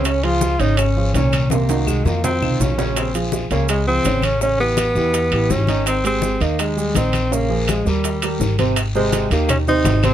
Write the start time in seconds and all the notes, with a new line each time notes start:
Already playing: C#2 C#3 C#4 C#5
0.05 C#4, high bongo, high timbale, long guiro, claves, maracas
0.23 F3 F4 G#4, high bongo, high conga, high timbale
0.41 high bongo, high conga, short guiro, maracas
0.59 G#1 C#3 C#4 D#4 C#5, high bongo, high conga, high timbale, short guiro, maracas
0.77 C#4, high bongo, high conga, high timbale, long guiro, claves, maracas
0.96 F3 F4 G#4, high conga
1.14 C2 A#2 C#4 C#5, high bongo, low bongo, high conga, high timbale, short guiro, maracas
1.32 high bongo, high conga, high timbale, short guiro, claves, maracas
1.50 C3 A#3 C4 C5, high bongo, high conga, high timbale, long guiro, maracas
1.69 D#3 D#4 F#4, high bongo, high conga, high timbale, maracas
1.87 G#3, high bongo, low conga, short guiro, claves, maracas
2.05 F2 D#3 A#3 D#4 F4, high bongo, high conga, low timbale, short guiro, maracas
2.24 C4, high bongo, low conga, low timbale, long guiro, maracas
2.41 C2 D#3 D#4 F4, low conga, claves
2.60 A#1 C#4, high bongo, low bongo, low conga, low timbale, short guiro, maracas
2.78 C#3 C#4 C#5, high bongo, low conga, low timbale, short guiro, maracas
2.96 C4, high bongo, high conga, high timbale, long guiro, claves, maracas
3.14 F3 F4 G#4, high bongo, high conga, high timbale, maracas
3.32 high bongo, high conga, short guiro, maracas
3.50 C#2 C#3 A#3 C#4 C#5, high bongo, high conga, high timbale, short guiro, maracas
3.69 G#3, high bongo, high conga, high timbale, long guiro, claves, maracas
3.86 F3 C4 F4 G#4, high conga
4.04 A1 C#3 C#4 C#5, high bongo, low bongo, high conga, high timbale, short guiro, maracas
4.22 C#4, high bongo, high conga, high timbale, short guiro, claves, maracas
4.41 C#3 C#4 C#5, high bongo, high conga, long guiro, maracas
4.59 E3 B3 E4 G4, high bongo, high conga
4.77 high bongo, high conga, high timbale, short guiro, claves, maracas
4.95 E2 E3 E4 G4, high bongo, short guiro, maracas
5.13 high bongo, high conga, high timbale, long guiro, maracas
5.31 A1 E3 E4 G4, high conga, high timbale, claves
5.50 G#1 C#4, high bongo, low bongo, high conga, low timbale, short guiro, maracas
5.67 D#3 D#4 D#5, high bongo, high conga, high timbale, short guiro, maracas
5.86 C4, high bongo, high conga, high timbale, long guiro, claves, maracas
6.04 G#3 C4 G4 G#4, high bongo, high conga, high timbale, maracas
6.22 high bongo, high conga, short guiro, maracas
6.40 D#2 D#3 A#3 D#4 D#5, high bongo, high conga, high timbale, short guiro, maracas
6.58 G#3, high bongo, high conga, high timbale, long guiro, claves, maracas
6.77 G3 G4 G#4, high conga, maracas
6.94 A#1 D#3 C4 D#4 D#5, high bongo, low bongo, high conga, high timbale, short guiro, maracas
7.13 high bongo, high conga, high timbale, short guiro, claves, maracas
7.31 C#3 A#3 C#4 C#5, high bongo, long guiro, maracas
7.50 F3 F4 G#4, high bongo, high conga
7.68 G#3, high bongo, high conga, high timbale, short guiro, claves, maracas
7.86 D#2 G3 G4 A#4, high bongo, high conga, short guiro, maracas
8.04 high bongo, high conga, high timbale, long guiro, maracas
8.22 G3 G4 A#4, high conga, high timbale, claves, maracas
8.40 G#1, high bongo, low bongo, high conga, short guiro, maracas
8.59 C3 C4 C5, high conga, high timbale, short guiro, maracas
8.76 high bongo, high timbale, long guiro, claves, maracas
8.95 C3 G#3 C4 C5, high conga, maracas
9.12 high bongo, high conga, high timbale, short guiro, maracas
9.31 D#2 D#3 A#3 D#4 G4, high conga, high timbale, short guiro, maracas
9.49 C#4, high bongo, high conga, low conga, high timbale, long guiro, claves, maracas
9.68 C3 C4 D#4 C5, high conga, maracas
9.84 G#1, high bongo, low bongo, high conga, high timbale, low timbale, short guiro, maracas
10.03 C3 C4 C5, high conga, high timbale, short guiro, claves, maracas